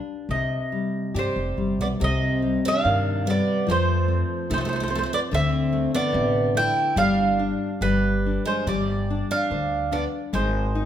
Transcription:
Already playing: nylon-string guitar G3 D4, mandolin F5
0.29 upright bass C2, nylon-string guitar C3, mandolin D#5
0.72 nylon-string guitar G3
1.14 upright bass G2, twelve-string acoustic guitar G3, nylon-string guitar G4
1.19 mandolin C5
1.36 upright bass F1
1.57 upright bass G1, nylon-string guitar G3
1.79 upright bass B1, twelve-string acoustic guitar B3, mandolin D5
2.00 upright bass C2, nylon-string guitar C3, twelve-string acoustic guitar C4
2.04 mandolin D#5
2.42 nylon-string guitar G3
2.65 twelve-string acoustic guitar D4, mandolin F5
2.84 upright bass G2, nylon-string guitar D#3
3.25 nylon-string guitar G3, twelve-string acoustic guitar B3
3.30 mandolin D5
3.67 upright bass F2, nylon-string guitar F3, twelve-string acoustic guitar A3
3.71 mandolin C5
4.08 nylon-string guitar C4
4.50 upright bass C2, twelve-string acoustic guitar A3, nylon-string guitar D#4, mandolin C5
4.58 twelve-string acoustic guitar A3, mandolin C5
4.65 twelve-string acoustic guitar A3, mandolin C5
4.73 twelve-string acoustic guitar A3, mandolin C5
4.80 twelve-string acoustic guitar A3, mandolin C5
4.88 twelve-string acoustic guitar A3, nylon-string guitar C4, mandolin C5
4.95 twelve-string acoustic guitar A3, mandolin C5
5.03 twelve-string acoustic guitar A3, mandolin C5
5.13 twelve-string acoustic guitar B3, mandolin D5
5.31 upright bass D2, nylon-string guitar D3, twelve-string acoustic guitar C4, mandolin E5
5.73 nylon-string guitar A3
5.95 twelve-string acoustic guitar B3, mandolin D5
6.12 upright bass A1, nylon-string guitar C3
6.55 nylon-string guitar A3, twelve-string acoustic guitar E4, mandolin G5
6.96 upright bass G1, nylon-string guitar G3, twelve-string acoustic guitar D4, mandolin F5
7.39 nylon-string guitar D4
7.81 upright bass G1, nylon-string guitar G3, twelve-string acoustic guitar G3, mandolin B4
8.26 nylon-string guitar D4
8.45 twelve-string acoustic guitar G#3, mandolin C5
8.67 upright bass G1, twelve-string acoustic guitar G3, nylon-string guitar G3, mandolin D5
9.10 nylon-string guitar D4
9.31 twelve-string acoustic guitar D4, mandolin F5
9.51 upright bass D2, nylon-string guitar C5
9.91 twelve-string acoustic guitar B3, nylon-string guitar D4, mandolin D5
10.33 upright bass G#1, nylon-string guitar G#3, twelve-string acoustic guitar G#3, mandolin C5
10.75 nylon-string guitar D#4

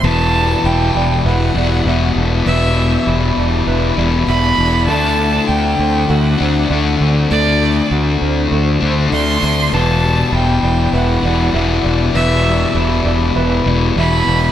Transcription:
0.03 fingered electric bass E1, distorted electric guitar E2 B2 E3, clean electric guitar E2, string section E3 D4 E4 G4 D5, felt piano B4, violin A5
0.35 clean electric guitar G3
0.64 fingered electric bass E1, clean electric guitar E4, violin G5
0.95 fingered electric bass E1, clean electric guitar D4, felt piano D5
1.25 fingered electric bass E1, clean electric guitar E4, felt piano B4, violin F#5
1.55 fingered electric bass E1, distorted electric guitar E2 B2 E3, clean electric guitar G3, felt piano D5
1.85 fingered electric bass E1, distorted electric guitar E2 B2 E3, clean electric guitar E3, felt piano E5
2.16 fingered electric bass E1, clean electric guitar D4
2.46 fingered electric bass E1, distorted electric guitar E2 B2 E3, clean electric guitar E2, felt piano B4, violin E5
2.76 clean electric guitar G3
3.07 fingered electric bass E1, clean electric guitar E4
3.37 fingered electric bass E1, clean electric guitar D4, felt piano D5
3.67 fingered electric bass E1, clean electric guitar E4, felt piano B4
3.97 fingered electric bass E1, distorted electric guitar E2 B2 E3, clean electric guitar G3, felt piano D5
4.26 fingered electric bass E1, distorted electric guitar E2 B2 E3, clean electric guitar E3, felt piano E5, violin B5
4.58 fingered electric bass E1, clean electric guitar D4
4.88 fingered electric bass D2, distorted electric guitar D3 A3 D4, string section D3 C4, clean electric guitar D3, felt piano A4, violin A5
5.19 clean electric guitar A3
5.48 fingered electric bass D2, violin G5
5.79 fingered electric bass D2, clean electric guitar C4, felt piano C5
6.09 fingered electric bass D2, clean electric guitar F#4, felt piano A4, violin F#5
6.38 fingered electric bass D2, distorted electric guitar D3 A3 D4, clean electric guitar A3, felt piano C5
6.69 fingered electric bass D2, distorted electric guitar D3 A3 D4, clean electric guitar D3, felt piano D5
7.00 fingered electric bass D2, clean electric guitar C4
7.29 fingered electric bass D2, distorted electric guitar D3 A3 D4, clean electric guitar D3, felt piano A4, violin D5
7.61 clean electric guitar A3
7.91 fingered electric bass D2, clean electric guitar F#4
8.21 fingered electric bass D2, clean electric guitar C4, felt piano C5
8.51 fingered electric bass D2, clean electric guitar F#4, felt piano A4
8.80 fingered electric bass D2, distorted electric guitar D3 A3 D4, clean electric guitar A3, felt piano C5
9.11 fingered electric bass D2, distorted electric guitar D3 A3 D4, clean electric guitar D3, felt piano D5, violin C6
9.41 fingered electric bass D2, clean electric guitar C4
9.71 fingered electric bass E1, distorted electric guitar E2 B2 E3, clean electric guitar E2, string section E3 B3 G4 D5, felt piano B4, violin A5
10.03 clean electric guitar G3
10.32 fingered electric bass E1, clean electric guitar E4, violin G5
10.63 fingered electric bass E1, clean electric guitar D4, felt piano D5
10.93 fingered electric bass E1, clean electric guitar E4, felt piano B4, violin F#5
11.23 fingered electric bass E1, distorted electric guitar E2 B2 E3, clean electric guitar G3, felt piano D5
11.53 fingered electric bass E1, distorted electric guitar E2 B2 E3, clean electric guitar E3, felt piano E5
11.84 fingered electric bass E1, clean electric guitar D4
12.14 fingered electric bass E1, distorted electric guitar E2 B2, clean electric guitar E2, felt piano B4, violin E5
12.18 distorted electric guitar E3
12.44 clean electric guitar G3
12.75 fingered electric bass E1, clean electric guitar E4
13.05 fingered electric bass E1, clean electric guitar D4, felt piano D5
13.36 fingered electric bass E1, clean electric guitar E4, felt piano B4
13.65 fingered electric bass E1, distorted electric guitar E2 B2 E3, clean electric guitar G3, felt piano D5
13.96 fingered electric bass E1, distorted electric guitar E2 B2 E3, clean electric guitar E3, felt piano E5, violin B5
14.27 fingered electric bass E1, clean electric guitar D4

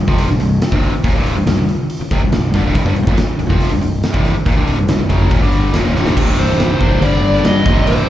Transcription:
0.07 fingered electric bass F1, overdriven electric guitar F2 C3 F3, kick
0.18 open hi-hat
0.28 fingered electric bass C1, overdriven electric guitar C2 G2, snare
0.39 fingered electric bass C1, overdriven electric guitar C2 G2, open hi-hat
0.62 snare, open hi-hat
0.72 fingered electric bass C1, overdriven electric guitar C2 G2 C3, kick
0.83 open hi-hat
0.92 muted fingered electric bass stroke, muted overdriven electric guitar stroke
1.04 fingered electric bass D#1, overdriven electric guitar D#2 A#2, kick, open hi-hat
1.13 fingered electric bass C1, overdriven electric guitar C2 G2 C3
1.26 open hi-hat
1.35 fingered electric bass C1, overdriven electric guitar C2 G2
1.46 fingered electric bass C1, overdriven electric guitar C2 G2, snare, open hi-hat
1.56 fingered electric bass C1, overdriven electric guitar C2 G2
1.68 muted fingered electric bass stroke, muted overdriven electric guitar stroke, open hi-hat
1.90 open hi-hat
2.00 muted fingered electric bass stroke, muted overdriven electric guitar stroke
2.11 fingered electric bass F1, overdriven electric guitar F2 C3, kick, open hi-hat
2.21 fingered electric bass C1, overdriven electric guitar C2 G2
2.32 fingered electric bass C1, overdriven electric guitar C2 G2, snare, open hi-hat
2.54 fingered electric bass G1, overdriven electric guitar G2 D3, kick, open hi-hat
2.65 fingered electric bass C1, overdriven electric guitar C2 G2
2.75 fingered electric bass C1, overdriven electric guitar C2 G2, kick, open hi-hat
2.85 fingered electric bass G1, overdriven electric guitar G2 D3, kick
2.96 fingered electric bass C1, overdriven electric guitar C2 G2, open hi-hat
3.07 fingered electric bass D#1, overdriven electric guitar D#2 A#2, kick
3.18 muted overdriven electric guitar stroke, muted fingered electric bass stroke, snare, open hi-hat
3.39 fingered electric bass C1, overdriven electric guitar C2 G2, open hi-hat
3.49 fingered electric bass F1, overdriven electric guitar F2 C3 F3, kick
3.61 open hi-hat
3.71 fingered electric bass C1, overdriven electric guitar C2 G2
3.82 fingered electric bass C1, overdriven electric guitar C2 G2, open hi-hat
4.03 snare, open hi-hat
4.13 fingered electric bass C1, overdriven electric guitar C2 G2 C3, kick
4.25 open hi-hat
4.36 muted overdriven electric guitar stroke, muted fingered electric bass stroke
4.46 fingered electric bass D#1, overdriven electric guitar D#2 A#2, kick, open hi-hat
4.56 fingered electric bass C1, overdriven electric guitar C2 G2 C3
4.67 open hi-hat
4.78 fingered electric bass C1, overdriven electric guitar C2 G2
4.88 fingered electric bass C1, overdriven electric guitar C2 G2, snare, open hi-hat
4.99 fingered electric bass C1, overdriven electric guitar C2 G2
5.09 fingered electric bass F#1, overdriven electric guitar F#2 C#3 F#3, kick, open hi-hat
5.31 fingered electric bass D#1, overdriven electric guitar D#2 A#2, kick, open hi-hat
5.41 fingered electric bass G1, overdriven electric guitar G2 D3 G3
5.52 open hi-hat
5.73 fingered electric bass C1, overdriven electric guitar C2 G2, snare, open hi-hat
5.83 fingered electric bass D#1, overdriven electric guitar D#2 A#2
5.95 fingered electric bass C1, overdriven electric guitar C2 G2 C3, snare
6.07 snare
6.15 fingered electric bass C1, overdriven electric guitar C2 G2 C3, kick, crash
6.29 snare
6.37 fingered electric bass C1, lead electric guitar C5
6.59 fingered electric bass C1, snare, crash
6.79 fingered electric bass C1, overdriven electric guitar G2 C3, kick
6.83 overdriven electric guitar C2
7.01 fingered electric bass G1, overdriven electric guitar G2 D3 G3, lead electric guitar D5, crash
7.23 fingered electric bass G1
7.34 snare
7.44 fingered electric bass G2, lead electric guitar D#5, snare, crash
7.65 fingered electric bass C1, overdriven electric guitar C2 G2 C3, kick
7.87 fingered electric bass C1, lead electric guitar C5, crash

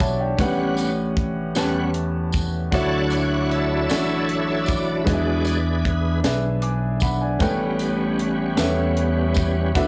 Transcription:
Already playing: fingered electric bass B1, grand piano E3 D4 F#4 G4 C#5 F#5 B5 D6
0.00 grand piano E5 A5, kick, closed hi-hat
0.21 grand piano D5 G5
0.37 fingered electric bass A1, grand piano A2 C#4 G4 B4 F#5, tonewheel organ G3 B3 C#4 F#5, kick, closed hi-hat, tambourine
0.77 closed hi-hat, tambourine
1.17 kick, closed hi-hat
1.55 fingered electric bass E2, tonewheel organ G3 B3 C#4 F#5, grand piano C#4 G4 B4 A5, snare, closed hi-hat, tambourine
1.94 closed hi-hat
2.32 kick, closed hi-hat, tambourine
2.71 fingered electric bass D2, grand piano D3 D4 F#4 C#5 E5, tonewheel organ F#3 D4 E4 C#5 F#5 A5, kick, closed hi-hat, tambourine
3.10 tonewheel organ F#5, closed hi-hat, tambourine
3.51 tonewheel organ A4 C#5 E5, closed hi-hat
3.88 fingered electric bass A1, grand piano D4 F#4 C#5 E5, snare, closed hi-hat, tambourine
4.29 closed hi-hat
4.65 tonewheel organ D5, kick, closed hi-hat, tambourine
5.01 grand piano D4 G#4, tonewheel organ D5 E5
5.05 fingered electric bass E2, grand piano E3 B4 D#5, tonewheel organ F#3 G#3 D4 G#4 B4, kick, closed hi-hat, tambourine
5.13 grand piano E5
5.45 closed hi-hat, tambourine
5.85 kick, closed hi-hat
6.23 fingered electric bass B1, grand piano D4 G#4 B4 E5, snare, closed hi-hat, tambourine
6.62 grand piano G#5 D6, closed hi-hat
7.00 grand piano F#5 B5, kick, closed hi-hat, tambourine
7.21 grand piano D5 G#5
7.39 fingered electric bass A1, grand piano A2 C#4 A4 B4 G5, tonewheel organ G3 B3, kick, closed hi-hat, tambourine
7.43 tonewheel organ C#4
7.79 closed hi-hat, tambourine
8.19 closed hi-hat
8.56 fingered electric bass E2, grand piano B3 A4 B4 E5, snare, closed hi-hat, tambourine
8.63 grand piano C#4
8.97 closed hi-hat
9.34 kick, closed hi-hat, tambourine
9.74 fingered electric bass D2, grand piano D3 D4 F#4 B4 E5, tonewheel organ F#3 B3 E4, kick, closed hi-hat, tambourine

